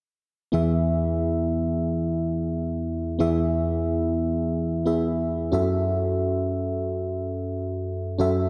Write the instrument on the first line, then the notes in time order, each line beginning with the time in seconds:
fm electric piano
0.52 E2 E3 B3 E4 G#4 E5
3.19 E2 E3 B3 E4 G#4 E5
4.86 B3 E4 G#4 E5
5.52 F#2 C#4 F#4 A4 E5
8.18 F#2 C#4 F#4 A4 E5